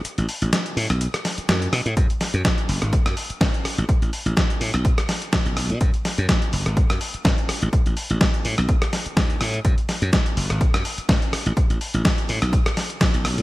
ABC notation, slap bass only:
X:1
M:4/4
L:1/16
Q:"Swing 16ths" 1/4=125
K:F#m
V:1 name="Slap bass" clef=bass
z A,,, z A,,, z2 A,, B,,, z4 F,, z B,, A,, | F,, z2 F,, z2 F,,, G,,, z F,, z2 G,,, z2 A,,, | z A,,, z A,,, z2 A,, B,,, z4 z B,,,2 B,, | F,, z2 F,, z2 F,,, G,,, z F,, z2 G,,, z2 A,,, |
z A,,, z A,,, z2 A,, B,,, z4 ^D,, z A,, z | F,, z2 F,, z2 F,,, G,,, z F,, z2 G,,, z2 A,,, | z A,,, z A,,, z2 A,, B,,, z4 z B,,,2 B,, |]